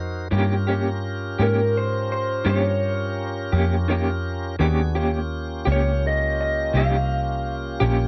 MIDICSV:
0, 0, Header, 1, 5, 480
1, 0, Start_track
1, 0, Tempo, 714286
1, 214, Time_signature, 12, 3, 24, 8
1, 5428, End_track
2, 0, Start_track
2, 0, Title_t, "Clean electric guitar"
2, 0, Program_c, 0, 27
2, 954, Note_on_c, 0, 70, 71
2, 1190, Note_off_c, 0, 70, 0
2, 1193, Note_on_c, 0, 72, 85
2, 1406, Note_off_c, 0, 72, 0
2, 1425, Note_on_c, 0, 72, 93
2, 1642, Note_off_c, 0, 72, 0
2, 1675, Note_on_c, 0, 73, 80
2, 2177, Note_off_c, 0, 73, 0
2, 3842, Note_on_c, 0, 73, 70
2, 4074, Note_off_c, 0, 73, 0
2, 4080, Note_on_c, 0, 75, 72
2, 4298, Note_off_c, 0, 75, 0
2, 4306, Note_on_c, 0, 75, 77
2, 4523, Note_off_c, 0, 75, 0
2, 4548, Note_on_c, 0, 77, 85
2, 5053, Note_off_c, 0, 77, 0
2, 5428, End_track
3, 0, Start_track
3, 0, Title_t, "Tonewheel organ"
3, 0, Program_c, 1, 16
3, 0, Note_on_c, 1, 63, 63
3, 0, Note_on_c, 1, 66, 64
3, 0, Note_on_c, 1, 70, 58
3, 0, Note_on_c, 1, 72, 62
3, 189, Note_off_c, 1, 63, 0
3, 189, Note_off_c, 1, 72, 0
3, 190, Note_off_c, 1, 66, 0
3, 190, Note_off_c, 1, 70, 0
3, 212, Note_on_c, 1, 70, 62
3, 213, Note_on_c, 1, 65, 63
3, 215, Note_on_c, 1, 67, 59
3, 216, Note_on_c, 1, 61, 63
3, 3065, Note_off_c, 1, 65, 0
3, 3065, Note_off_c, 1, 70, 0
3, 3066, Note_off_c, 1, 67, 0
3, 3067, Note_off_c, 1, 61, 0
3, 3091, Note_on_c, 1, 68, 57
3, 3092, Note_on_c, 1, 66, 59
3, 3093, Note_on_c, 1, 62, 59
3, 3096, Note_on_c, 1, 59, 52
3, 3329, Note_on_c, 1, 61, 61
3, 3329, Note_on_c, 1, 65, 64
3, 3329, Note_on_c, 1, 67, 64
3, 3332, Note_off_c, 1, 66, 0
3, 3332, Note_off_c, 1, 68, 0
3, 3333, Note_off_c, 1, 62, 0
3, 3333, Note_on_c, 1, 58, 60
3, 3334, Note_off_c, 1, 59, 0
3, 5428, Note_off_c, 1, 58, 0
3, 5428, Note_off_c, 1, 61, 0
3, 5428, Note_off_c, 1, 65, 0
3, 5428, Note_off_c, 1, 67, 0
3, 5428, End_track
4, 0, Start_track
4, 0, Title_t, "Clean electric guitar"
4, 0, Program_c, 2, 27
4, 209, Note_on_c, 2, 51, 73
4, 213, Note_on_c, 2, 61, 92
4, 214, Note_on_c, 2, 58, 74
4, 220, Note_on_c, 2, 67, 88
4, 355, Note_off_c, 2, 51, 0
4, 357, Note_off_c, 2, 61, 0
4, 358, Note_off_c, 2, 58, 0
4, 361, Note_off_c, 2, 67, 0
4, 450, Note_on_c, 2, 67, 52
4, 460, Note_on_c, 2, 61, 52
4, 468, Note_on_c, 2, 58, 38
4, 596, Note_off_c, 2, 67, 0
4, 600, Note_off_c, 2, 61, 0
4, 604, Note_off_c, 2, 58, 0
4, 931, Note_on_c, 2, 67, 50
4, 938, Note_on_c, 2, 61, 46
4, 946, Note_on_c, 2, 58, 38
4, 1076, Note_off_c, 2, 67, 0
4, 1079, Note_off_c, 2, 61, 0
4, 1083, Note_off_c, 2, 58, 0
4, 1644, Note_on_c, 2, 51, 71
4, 1648, Note_on_c, 2, 58, 62
4, 1655, Note_on_c, 2, 61, 73
4, 1656, Note_on_c, 2, 67, 83
4, 1792, Note_off_c, 2, 51, 0
4, 1794, Note_off_c, 2, 58, 0
4, 1798, Note_off_c, 2, 61, 0
4, 1798, Note_off_c, 2, 67, 0
4, 2369, Note_on_c, 2, 67, 65
4, 2379, Note_on_c, 2, 61, 53
4, 2383, Note_on_c, 2, 58, 56
4, 2514, Note_off_c, 2, 67, 0
4, 2520, Note_off_c, 2, 61, 0
4, 2522, Note_off_c, 2, 58, 0
4, 2608, Note_on_c, 2, 51, 61
4, 2616, Note_on_c, 2, 58, 58
4, 2621, Note_on_c, 2, 61, 60
4, 2627, Note_on_c, 2, 67, 66
4, 2754, Note_off_c, 2, 51, 0
4, 2758, Note_off_c, 2, 58, 0
4, 2760, Note_off_c, 2, 61, 0
4, 2763, Note_off_c, 2, 67, 0
4, 3085, Note_on_c, 2, 51, 83
4, 3088, Note_on_c, 2, 58, 79
4, 3094, Note_on_c, 2, 61, 83
4, 3097, Note_on_c, 2, 67, 89
4, 3233, Note_off_c, 2, 51, 0
4, 3234, Note_off_c, 2, 58, 0
4, 3237, Note_off_c, 2, 61, 0
4, 3239, Note_off_c, 2, 67, 0
4, 3328, Note_on_c, 2, 67, 53
4, 3335, Note_on_c, 2, 61, 52
4, 3343, Note_on_c, 2, 58, 45
4, 3474, Note_off_c, 2, 67, 0
4, 3478, Note_off_c, 2, 61, 0
4, 3481, Note_off_c, 2, 58, 0
4, 3799, Note_on_c, 2, 67, 48
4, 3809, Note_on_c, 2, 61, 43
4, 3816, Note_on_c, 2, 58, 39
4, 3950, Note_off_c, 2, 67, 0
4, 3955, Note_off_c, 2, 61, 0
4, 3958, Note_off_c, 2, 58, 0
4, 4524, Note_on_c, 2, 51, 74
4, 4529, Note_on_c, 2, 58, 69
4, 4529, Note_on_c, 2, 61, 65
4, 4533, Note_on_c, 2, 67, 83
4, 4672, Note_off_c, 2, 51, 0
4, 4675, Note_off_c, 2, 58, 0
4, 4675, Note_off_c, 2, 61, 0
4, 4676, Note_off_c, 2, 67, 0
4, 5243, Note_on_c, 2, 67, 66
4, 5252, Note_on_c, 2, 61, 63
4, 5263, Note_on_c, 2, 58, 55
4, 5392, Note_off_c, 2, 67, 0
4, 5396, Note_off_c, 2, 61, 0
4, 5402, Note_off_c, 2, 58, 0
4, 5428, End_track
5, 0, Start_track
5, 0, Title_t, "Picked electric bass"
5, 0, Program_c, 3, 34
5, 0, Note_on_c, 3, 41, 93
5, 194, Note_off_c, 3, 41, 0
5, 216, Note_on_c, 3, 43, 78
5, 912, Note_off_c, 3, 43, 0
5, 938, Note_on_c, 3, 44, 85
5, 1633, Note_off_c, 3, 44, 0
5, 1651, Note_on_c, 3, 43, 65
5, 2350, Note_off_c, 3, 43, 0
5, 2373, Note_on_c, 3, 41, 89
5, 3071, Note_off_c, 3, 41, 0
5, 3090, Note_on_c, 3, 39, 74
5, 3789, Note_off_c, 3, 39, 0
5, 3810, Note_on_c, 3, 37, 80
5, 4510, Note_off_c, 3, 37, 0
5, 4529, Note_on_c, 3, 36, 67
5, 5229, Note_off_c, 3, 36, 0
5, 5250, Note_on_c, 3, 34, 87
5, 5428, Note_off_c, 3, 34, 0
5, 5428, End_track
0, 0, End_of_file